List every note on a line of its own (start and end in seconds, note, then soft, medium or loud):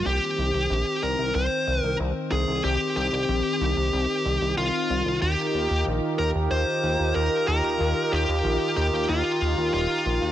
0.06 0.19 C2 loud
0.06 10.32 D#3 medium
0.06 5.18 C4 medium
0.06 1.06 G4 loud
0.38 0.51 C2 medium
0.54 0.67 C2 medium
0.70 0.84 A#1 loud
1.03 1.16 C2 medium
1.03 1.33 A#4 loud
1.19 1.32 C2 medium
1.35 1.48 C2 loud
1.35 1.81 C5 loud
1.67 1.81 C2 medium
1.81 1.97 C2 medium
1.81 1.96 A#4 loud
1.99 2.13 C2 loud
2.32 2.45 C2 loud
2.32 2.64 G#4 loud
2.48 2.61 C2 medium
2.64 2.77 C2 loud
2.64 2.95 G4 loud
2.96 3.10 C2 medium
2.96 4.54 G4 loud
3.13 3.26 C2 medium
3.29 3.42 A#1 loud
3.61 3.74 C2 loud
3.77 3.90 C2 medium
3.93 4.06 C2 loud
4.25 4.39 C2 medium
4.41 4.55 C2 medium
4.58 4.71 C2 loud
4.58 5.18 F4 medium
4.90 5.03 C2 loud
5.06 5.19 C2 medium
5.22 5.35 D#2 loud
5.22 10.32 D#4 medium
5.22 10.32 F4 medium
5.22 5.82 G4 medium
5.22 10.32 G4 medium
5.22 10.32 A#4 medium
5.54 5.68 D#2 medium
5.70 5.84 D#2 medium
5.87 6.00 A#1 loud
6.19 6.32 D#2 loud
6.19 6.27 A#4 loud
6.35 6.48 D#2 medium
6.51 6.64 D#2 loud
6.51 7.15 C5 loud
6.83 6.97 D#2 medium
6.99 7.13 D#2 medium
7.15 7.29 D#2 loud
7.15 7.46 A#4 loud
7.48 7.61 D#2 medium
7.48 8.14 A#4 loud
7.64 7.77 D#2 medium
7.80 7.93 D#2 loud
8.12 8.26 D#2 medium
8.12 8.76 G4 loud
8.28 8.42 D#2 medium
8.45 8.58 A#1 loud
8.77 8.90 D#2 loud
8.77 9.09 G4 medium
8.93 9.06 D#2 medium
9.09 9.22 D#2 loud
9.09 9.73 F4 medium
9.41 9.55 D#2 medium
9.58 9.71 D#2 medium
9.74 9.87 D#1 loud
9.74 10.32 F4 medium
10.06 10.19 A#1 medium
10.22 10.32 D#2 medium